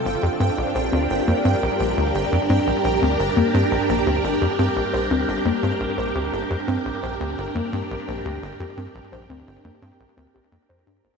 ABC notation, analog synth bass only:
X:1
M:4/4
L:1/16
Q:1/4=86
K:Gphr
V:1 name="Analog synth bass" clef=bass
G,,, F,, G,, B,,, B,,, D,, G,,, F,, G,, B,,, B,,, D,, G,,, F,, G,, B,,, | B,,, D,, G,,, F,, G,, B,,, B,,, D,, G,,, F,, G,, B,,, B,,, D,, G,,, F,, | G,, B,,, B,,, D,, G,,, F,, G,, B,,, B,,, D,, G,,, F,, G,, B,,, B,,, D,, | G,,, F,, G,, B,,, B,,, D,, G,,, F,, G,, B,,, D,, B,,, F,, F,, G,, G,,, |]